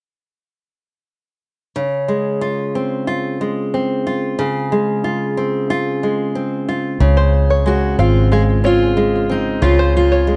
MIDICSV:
0, 0, Header, 1, 5, 480
1, 0, Start_track
1, 0, Key_signature, -5, "major"
1, 0, Tempo, 655022
1, 1293, Time_signature, 4, 2, 24, 8
1, 7595, End_track
2, 0, Start_track
2, 0, Title_t, "Five-string banjo"
2, 0, Program_c, 0, 105
2, 5254, Note_on_c, 0, 72, 68
2, 5368, Note_off_c, 0, 72, 0
2, 5498, Note_on_c, 0, 73, 60
2, 5724, Note_off_c, 0, 73, 0
2, 5857, Note_on_c, 0, 77, 57
2, 5969, Note_off_c, 0, 77, 0
2, 6097, Note_on_c, 0, 77, 65
2, 6323, Note_off_c, 0, 77, 0
2, 6337, Note_on_c, 0, 73, 65
2, 6448, Note_off_c, 0, 73, 0
2, 7176, Note_on_c, 0, 72, 78
2, 7287, Note_off_c, 0, 72, 0
2, 7414, Note_on_c, 0, 73, 66
2, 7595, Note_off_c, 0, 73, 0
2, 7595, End_track
3, 0, Start_track
3, 0, Title_t, "Steel-string acoustic guitar"
3, 0, Program_c, 1, 25
3, 5623, Note_on_c, 1, 66, 79
3, 5860, Note_off_c, 1, 66, 0
3, 5863, Note_on_c, 1, 65, 74
3, 6081, Note_off_c, 1, 65, 0
3, 6103, Note_on_c, 1, 68, 78
3, 6166, Note_off_c, 1, 68, 0
3, 6348, Note_on_c, 1, 65, 86
3, 6826, Note_on_c, 1, 63, 74
3, 6834, Note_off_c, 1, 65, 0
3, 7042, Note_off_c, 1, 63, 0
3, 7061, Note_on_c, 1, 65, 73
3, 7294, Note_off_c, 1, 65, 0
3, 7303, Note_on_c, 1, 65, 90
3, 7595, Note_off_c, 1, 65, 0
3, 7595, End_track
4, 0, Start_track
4, 0, Title_t, "Nylon-string guitar"
4, 0, Program_c, 2, 24
4, 1288, Note_on_c, 2, 49, 58
4, 1527, Note_on_c, 2, 56, 45
4, 1769, Note_on_c, 2, 65, 48
4, 2017, Note_on_c, 2, 60, 48
4, 2249, Note_off_c, 2, 65, 0
4, 2252, Note_on_c, 2, 65, 51
4, 2495, Note_off_c, 2, 56, 0
4, 2498, Note_on_c, 2, 56, 47
4, 2737, Note_off_c, 2, 60, 0
4, 2740, Note_on_c, 2, 60, 42
4, 2977, Note_off_c, 2, 65, 0
4, 2980, Note_on_c, 2, 65, 48
4, 3206, Note_off_c, 2, 49, 0
4, 3214, Note_on_c, 2, 49, 59
4, 3456, Note_off_c, 2, 56, 0
4, 3459, Note_on_c, 2, 56, 47
4, 3692, Note_off_c, 2, 65, 0
4, 3695, Note_on_c, 2, 65, 50
4, 3935, Note_off_c, 2, 60, 0
4, 3938, Note_on_c, 2, 60, 54
4, 4175, Note_off_c, 2, 65, 0
4, 4178, Note_on_c, 2, 65, 54
4, 4417, Note_off_c, 2, 56, 0
4, 4420, Note_on_c, 2, 56, 45
4, 4653, Note_off_c, 2, 60, 0
4, 4656, Note_on_c, 2, 60, 46
4, 4896, Note_off_c, 2, 65, 0
4, 4899, Note_on_c, 2, 65, 46
4, 5124, Note_off_c, 2, 49, 0
4, 5132, Note_on_c, 2, 49, 67
4, 5608, Note_off_c, 2, 56, 0
4, 5611, Note_on_c, 2, 56, 47
4, 5851, Note_off_c, 2, 60, 0
4, 5853, Note_on_c, 2, 60, 58
4, 6091, Note_off_c, 2, 56, 0
4, 6094, Note_on_c, 2, 56, 47
4, 6327, Note_off_c, 2, 60, 0
4, 6330, Note_on_c, 2, 60, 50
4, 6569, Note_off_c, 2, 56, 0
4, 6572, Note_on_c, 2, 56, 51
4, 6809, Note_off_c, 2, 60, 0
4, 6812, Note_on_c, 2, 60, 48
4, 7040, Note_off_c, 2, 49, 0
4, 7049, Note_off_c, 2, 65, 0
4, 7049, Note_on_c, 2, 49, 66
4, 7052, Note_on_c, 2, 65, 58
4, 7524, Note_off_c, 2, 56, 0
4, 7527, Note_on_c, 2, 56, 50
4, 7595, Note_off_c, 2, 49, 0
4, 7595, Note_off_c, 2, 56, 0
4, 7595, Note_off_c, 2, 60, 0
4, 7595, Note_off_c, 2, 65, 0
4, 7595, End_track
5, 0, Start_track
5, 0, Title_t, "Fingered electric bass"
5, 0, Program_c, 3, 33
5, 5132, Note_on_c, 3, 37, 84
5, 5822, Note_off_c, 3, 37, 0
5, 5852, Note_on_c, 3, 32, 75
5, 7021, Note_off_c, 3, 32, 0
5, 7051, Note_on_c, 3, 37, 94
5, 7595, Note_off_c, 3, 37, 0
5, 7595, End_track
0, 0, End_of_file